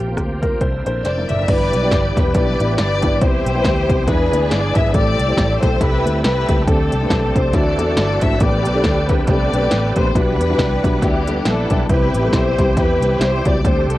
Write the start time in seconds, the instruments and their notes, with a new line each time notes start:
Already playing: upright piano C3, tonewheel organ F3 A#3 C4 G4, grand piano G4
0.00 fingered electric bass A#1
0.08 upright piano A#3 C4 F4 G4
0.17 fingered electric bass D2, kick, cross-stick, closed hi-hat
0.42 upright piano A#3 C4 F4 A#4, grand piano A#4, kick, closed hi-hat
0.60 fingered electric bass C2, upright piano C3, tonewheel organ D3 A#3 C4 E4, grand piano C5, kick, cross-stick, closed hi-hat
0.86 fingered electric bass A#1, upright piano C4 D4 E4 A#4, grand piano C5, closed hi-hat
1.04 fingered electric bass F1, grand piano C5, string section D5, snare, closed hi-hat
1.17 upright piano C4 D4 E4 A#4, high tom
1.29 fingered electric bass F#1, grand piano D5, string section E5, closed hi-hat, mid tom
1.39 floor tom
1.48 fingered electric bass G1, upright piano G2 B3 D4 E4 G4 B4, tonewheel organ E3 G3 B3 D4 G4, string section B4 D5, kick, closed hi-hat, crash
1.73 fingered electric bass B1, closed hi-hat
1.82 upright piano B3 D4 E4 G4 D5
1.91 fingered electric bass G1, kick, snare, closed hi-hat
2.16 fingered electric bass E1, upright piano B3 D4 E4 G4 B4, string section B4, kick, snare, closed hi-hat
2.34 fingered electric bass B1, upright piano B3 D4 E4 G4 B4, string section B4 D5, kick, snare, closed hi-hat
2.60 fingered electric bass A1, upright piano B3 D4 E4 G4 B4, closed hi-hat
2.78 fingered electric bass G1, string section B4 D5, snare, closed hi-hat
3.02 upright piano B3 D4 E4 G4 B4, kick, closed hi-hat
3.21 fingered electric bass C2, upright piano C3 B3 C4 E4 G4 B4, tonewheel organ D#3 G3 C4 G4, string section E4 G4 C5, kick, closed hi-hat
3.28 tonewheel organ E3
3.46 fingered electric bass B1, closed hi-hat
3.55 upright piano B3 C4 E4 G4 B4
3.64 fingered electric bass D2, kick, snare, closed hi-hat
3.89 fingered electric bass C2, upright piano B3 C4 E4 G4 C5, kick, closed hi-hat
4.07 fingered electric bass E2, upright piano E3 B3 D4 E4 G#4 B4, tonewheel organ E3 G#3 B3 D4 F#4, string section D4 G#4 B4, kick, snare, closed hi-hat
4.13 tonewheel organ G#4
4.32 fingered electric bass D2, upright piano B3 D4 E4 G#4 D5, closed hi-hat
4.51 fingered electric bass G1, string section D5, snare, closed hi-hat
4.75 fingered electric bass G#1, upright piano B3 D4 E4 G#4 B4, string section E5, kick, closed hi-hat
4.94 fingered electric bass A1, upright piano A2 A3 C4 E4 G4 A4, tonewheel organ G3 A3 B3 E4 A4, string section G4 D5, kick, closed hi-hat
5.01 tonewheel organ C4
5.19 fingered electric bass C2, closed hi-hat
5.28 upright piano A3 C4 E4 G4 C5
5.37 fingered electric bass A1, kick, snare, closed hi-hat
5.62 fingered electric bass B1, upright piano A3 C4 E4 G4 A4, string section C5, kick, snare, closed hi-hat
5.80 fingered electric bass C2, upright piano A3 C4 E4 G4 A4, string section E4 G4 B4, kick, snare, closed hi-hat
6.05 fingered electric bass D2, upright piano A3 C4 E4 G4 B4, closed hi-hat
6.24 fingered electric bass C2, string section E4 G4 B4, snare, closed hi-hat
6.48 fingered electric bass C#2, upright piano A3 C4 E4 G4 A4, kick, closed hi-hat
6.67 fingered electric bass D2, upright piano D3 A3 C4 D4 G4 A4, tonewheel organ G3 A3 C4 D4 A4, string section C4 A4, kick, closed hi-hat
6.92 fingered electric bass C2, closed hi-hat
7.02 upright piano A3 C4 D4 G4 B4
7.10 fingered electric bass B1, kick, snare, closed hi-hat
7.35 fingered electric bass C2, upright piano A3 C4 D4 G4 A4, string section C5, kick, closed hi-hat
7.53 fingered electric bass D2, upright piano D3 A3 C4 D4 E4 F#4, tonewheel organ E3 A3 C4 D4 E4, string section F#4 A4 D5, kick, snare, closed hi-hat
7.60 tonewheel organ F#4
7.78 fingered electric bass E2, upright piano A3 C4 D4 E4 A4, closed hi-hat
7.97 fingered electric bass G1, string section D5, snare, closed hi-hat
8.22 fingered electric bass G#1, upright piano A3 C4 D4 E4 F#4, string section E5, kick, closed hi-hat
8.40 fingered electric bass A1, upright piano A2 A3 B3 C4 D4 G4, tonewheel organ D3 A3 B3 C4 G4, string section G4 B4 D5, kick, closed hi-hat
8.66 fingered electric bass B1, closed hi-hat
8.75 upright piano A3 B3 C4 D4 A4
8.84 fingered electric bass D2, kick, snare, closed hi-hat
9.09 upright piano A3 B3 C4 D4 G4, string section B4, kick, snare, closed hi-hat
9.27 fingered electric bass C2, upright piano A3 B3 C4 D4 G4, string section G4 B4 D5, kick, snare, closed hi-hat
9.53 fingered electric bass B1, upright piano A3 B3 C4 D4 G4, closed hi-hat
9.71 fingered electric bass A1, snare, closed hi-hat
9.96 fingered electric bass A#1, upright piano A3 B3 C4 D4 G4, string section C5, kick, closed hi-hat
10.15 fingered electric bass B1, upright piano B2 G3 B3 D4 E4 F#4, tonewheel organ E3 G3 B3 D4 F#5, string section D4 G4 B4, kick, closed hi-hat
10.40 fingered electric bass E2, closed hi-hat
10.49 upright piano G3 B3 D4 E4 F#4
10.58 fingered electric bass C2, kick, snare, closed hi-hat
10.83 fingered electric bass B1, upright piano G3 B3 D4 E4 F#4, kick, closed hi-hat
11.02 fingered electric bass D2, upright piano G3 B3 D4 E4 F#4, string section D4 E4 G4, kick, snare, closed hi-hat
11.27 upright piano G3 B3 D4 E4 A4, closed hi-hat
11.45 fingered electric bass A#1, string section D4 E4 A4, snare, closed hi-hat
11.70 fingered electric bass B1, upright piano G3 B3 D4 E4 G4, kick, closed hi-hat
11.89 fingered electric bass C2, upright piano C3 G3 B3 C4 E4 G4, tonewheel organ E3 G3 C4 G4, string section E4 G4 B4, kick, closed hi-hat
12.14 fingered electric bass A1, closed hi-hat
12.24 upright piano G3 B3 C4 E4 A4
12.33 fingered electric bass B1, string section E4 G4 C5, kick, snare, closed hi-hat
12.58 fingered electric bass C2, upright piano G3 B3 C4 E4 G4, kick, snare, closed hi-hat
12.76 fingered electric bass E2, upright piano G3 B3 C4 E4 G4, string section E4 G4 B4, kick, snare, closed hi-hat
13.00 fingered electric bass C2, upright piano G3 B3 C4 E4 G4, closed hi-hat
13.19 fingered electric bass C2, string section C5, snare, closed hi-hat
13.45 fingered electric bass C#2, upright piano G3 B3 C4 E4 F#4, string section D5, kick, closed hi-hat
13.65 fingered electric bass D2, tonewheel organ D3 G3 A3 C4 G4, upright piano D3 G3 A3 C4 D4 G4, string section G4 A4 C5, kick, closed hi-hat
13.88 fingered electric bass C2, string section A4, closed hi-hat